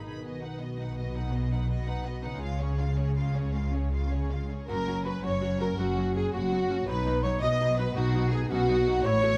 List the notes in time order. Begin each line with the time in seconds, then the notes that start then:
Already playing: G#1 G#2 D#3 B4
0.05 B2 B3 D#4 G#4 B5
0.12 D#4
0.16 F#4
0.21 B3 B4
0.25 B1 B2 F#4 D#5
0.42 D#4 B4 F#5
0.61 B3 F#4 D#5
0.80 D#4 B4 F#5
0.98 B3 F#4 D#5
1.16 D#4 B4 F#5
1.34 B3 F#4 D#5
1.53 D#4 B4 F#5
1.70 B3 F#4 D#5
1.88 D#4 B4 F#5
2.06 B3 F#4 D#5
2.24 C#3 D#4 B4 F#5
2.30 C#4
2.34 F4
2.39 F4 G#4
2.43 C#2 C#3 G#3 F5
2.61 C#4 G#4 C#5
2.79 G#3 F4 F5
2.98 C#4 G#4 C#5
3.16 G#3 F4 F5
3.35 C#4 G#4 C#5
3.55 G#3 F4 F5
3.73 C#4 G#4 C#5
3.92 G#3 F4 F5
4.11 C#4 G#4 C#5
4.30 G#3 F4 F5
4.49 C#4 G#4 C#5
4.68 F#1 F#2 F#3 C#4 F#4 A#4 A#5
4.87 F#3 C#4 F#4
5.04 F#3 F#4 B4 B5
5.22 F#1 F#2 F#3 F#4 C#5 C#6
5.41 F#3 F#4 F#5
5.60 F#3 F#4 A#4 C#5 A#5
5.77 F#1 F#2 F#3 F#4 F#5
5.97 F#3 C#4 F#4
6.15 F#3 F#4 G#4 G#5
6.32 F#1 F#2 F#3 A#3 F#4 C#5 F#5
6.51 F#3 B3 F#4 F#5
6.70 F#3 C#4 F#4 C#5
6.87 B1 B2 F#3 D#4 B4 B5
7.06 F#3 B3 D#4
7.23 F#3 D#4 F#4 C#5 C#6
7.41 B1 B2 F#3 B3 D#4 B4 D#5 D#6
7.60 F#3 D#4 D#5
7.78 F#3 D#4 B4 B5
7.95 B1 B2 F#3 D#4 F#4 F#5
8.14 F#3 B3 D#4
8.31 F#3 D#4 F#4 G#4 G#5
8.50 B1 B2 F#3 C#4 D#4 F#4 B4 F#5
8.68 F#3 B3 D#4 D#5
8.86 F#3 D#4 B4
9.04 A1 A2 A3 E4 C#5 C#6
9.22 A3 B3 E4 F#4